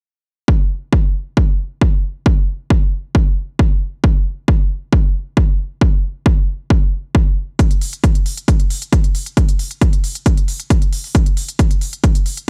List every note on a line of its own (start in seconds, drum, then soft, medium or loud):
0.48 kick loud
0.93 kick loud
1.37 kick loud
1.81 kick loud
2.26 kick loud
2.70 kick loud
3.15 kick loud
3.59 kick loud
4.04 kick loud
4.48 kick loud
4.93 kick loud
5.37 kick loud
5.81 kick loud
6.26 kick loud
6.70 kick loud
7.15 kick loud
7.59 kick loud
7.59 closed hi-hat medium
7.71 closed hi-hat soft
7.81 open hi-hat loud
7.93 closed hi-hat soft
8.04 kick loud
8.04 closed hi-hat medium
8.15 closed hi-hat soft
8.26 open hi-hat loud
8.37 closed hi-hat soft
8.48 kick loud
8.48 closed hi-hat medium
8.60 closed hi-hat soft
8.70 open hi-hat loud
8.82 closed hi-hat soft
8.93 kick loud
8.93 closed hi-hat medium
9.04 closed hi-hat soft
9.15 open hi-hat loud
9.26 closed hi-hat medium
9.37 kick loud
9.37 closed hi-hat medium
9.49 closed hi-hat soft
9.59 open hi-hat loud
9.71 closed hi-hat soft
9.81 kick loud
9.81 closed hi-hat medium
9.93 closed hi-hat soft
10.04 open hi-hat loud
10.15 closed hi-hat medium
10.26 kick loud
10.26 closed hi-hat medium
10.37 closed hi-hat soft
10.48 open hi-hat loud
10.60 closed hi-hat soft
10.70 kick loud
10.70 closed hi-hat medium
10.82 closed hi-hat soft
10.93 open hi-hat loud
11.04 open hi-hat medium
11.15 kick loud
11.15 closed hi-hat medium
11.26 closed hi-hat soft
11.37 open hi-hat loud
11.48 closed hi-hat medium
11.59 kick loud
11.59 closed hi-hat medium
11.71 closed hi-hat medium
11.81 open hi-hat medium
11.93 closed hi-hat medium
12.04 kick loud
12.04 closed hi-hat medium
12.15 closed hi-hat medium
12.26 open hi-hat medium
12.37 closed hi-hat medium